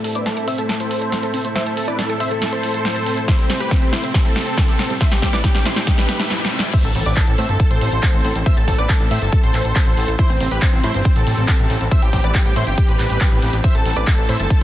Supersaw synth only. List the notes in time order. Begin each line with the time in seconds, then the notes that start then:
0.04 A4
0.15 B4 D5
0.26 A4
0.37 A4
0.47 C5 E5
0.58 A4
0.69 A4
0.80 A4 C5
1.55 C5 E5
1.66 A4
1.77 A4
1.88 B4 D5
1.98 A4
2.09 A4
2.20 C5 E5
2.31 A4
2.42 A4
2.52 A4 C5
3.28 E4 C5
3.39 C4
3.50 C4
3.60 G4 B4
3.71 C4
3.82 C4
3.93 E4 C5
4.03 C4
4.14 C4
4.25 C4 A4
5.01 C5 E5
5.12 G4
5.22 G4
5.33 B4 D5
5.44 G4
5.55 G4
5.66 E4 C5
5.77 G4
5.88 G4
5.98 G4 B4
6.74 C5 E5
6.85 A4
6.95 A4
7.06 B4 D5
7.17 A4
7.28 A4
7.38 C5 E5
7.49 A4
7.60 A4
7.71 A4 C5
8.46 C5 E5
8.57 A4
8.68 A4
8.78 B4 D5
8.89 A4
9.00 A4
9.11 C5 E5
9.22 A4
9.33 A4
9.44 A4 C5
10.19 E4 C5
10.30 C4
10.40 C4
10.52 G4 B4
10.62 C4
10.73 C4
10.84 E4 C5
10.95 C4
11.05 C4
11.16 C4 A4
11.92 C5 E5
12.03 G4
12.13 G4
12.24 B4 D5
12.35 G4
12.46 G4
12.56 E4 C5
12.67 G4
12.78 G4
12.89 G4 B4
13.64 C5 E5
13.75 A4
13.86 A4
13.96 B4 D5
14.07 A4
14.18 A4
14.29 C5 E5
14.40 A4
14.50 A4